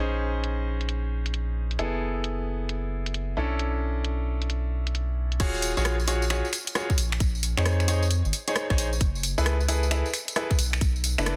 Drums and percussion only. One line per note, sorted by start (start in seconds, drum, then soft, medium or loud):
0.44 closed hi-hat medium
0.81 closed hi-hat soft
0.89 closed hi-hat medium
1.26 closed hi-hat medium
1.34 closed hi-hat medium
1.71 closed hi-hat soft
1.79 closed hi-hat medium
2.24 closed hi-hat medium
2.69 closed hi-hat medium
3.06 closed hi-hat medium
3.14 closed hi-hat medium
3.59 closed hi-hat medium
4.04 closed hi-hat medium
4.42 closed hi-hat soft
4.50 closed hi-hat medium
4.87 closed hi-hat medium
4.95 closed hi-hat medium
5.32 closed hi-hat soft
5.40 kick loud
5.40 closed hi-hat medium
5.40 tambourine soft
5.40 crash loud
5.54 tambourine soft
5.62 open hi-hat loud
5.62 tambourine medium
5.77 tambourine soft
5.85 cross-stick loud
5.85 closed hi-hat medium
5.85 tambourine soft
6.00 tambourine soft
6.08 open hi-hat loud
6.08 tambourine medium
6.22 tambourine soft
6.30 finger snap medium
6.30 closed hi-hat medium
6.30 tambourine soft
6.45 tambourine soft
6.53 finger snap soft
6.53 open hi-hat loud
6.53 tambourine medium
6.67 closed hi-hat medium
6.67 tambourine soft
6.75 cross-stick loud
6.75 closed hi-hat medium
6.75 tambourine soft
6.90 kick loud
6.90 tambourine soft
6.98 open hi-hat loud
6.98 tambourine medium
7.12 finger snap medium
7.12 tambourine soft
7.20 kick loud
7.20 closed hi-hat medium
7.20 tambourine soft
7.35 tambourine soft
7.43 open hi-hat loud
7.43 tambourine medium
7.57 finger snap medium
7.57 tambourine soft
7.66 cross-stick loud
7.66 closed hi-hat medium
7.66 tambourine soft
7.80 finger snap soft
7.80 tambourine soft
7.88 open hi-hat loud
7.88 tambourine medium
8.03 tambourine soft
8.11 closed hi-hat medium
8.11 tambourine soft
8.25 tambourine soft
8.33 open hi-hat loud
8.33 tambourine medium
8.48 closed hi-hat medium
8.48 tambourine soft
8.56 cross-stick loud
8.56 closed hi-hat medium
8.56 tambourine soft
8.70 kick loud
8.70 cross-stick medium
8.70 tambourine soft
8.78 open hi-hat loud
8.78 tambourine medium
8.93 tambourine soft
9.01 kick loud
9.01 closed hi-hat medium
9.01 tambourine soft
9.15 tambourine soft
9.23 open hi-hat loud
9.23 tambourine medium
9.38 tambourine soft
9.46 cross-stick loud
9.46 closed hi-hat medium
9.46 tambourine soft
9.60 tambourine soft
9.69 open hi-hat loud
9.69 tambourine medium
9.83 tambourine soft
9.91 finger snap medium
9.91 closed hi-hat medium
9.91 tambourine soft
10.06 tambourine soft
10.14 finger snap soft
10.14 open hi-hat loud
10.14 tambourine medium
10.28 closed hi-hat medium
10.28 tambourine soft
10.36 cross-stick loud
10.36 closed hi-hat medium
10.36 tambourine soft
10.51 kick loud
10.51 tambourine soft
10.59 open hi-hat loud
10.59 tambourine medium
10.73 finger snap medium
10.73 tambourine soft
10.81 kick loud
10.81 closed hi-hat medium
10.81 tambourine soft
10.96 tambourine soft
11.04 open hi-hat loud
11.04 tambourine medium
11.18 finger snap medium
11.18 tambourine soft
11.26 cross-stick loud
11.26 closed hi-hat medium
11.26 tambourine soft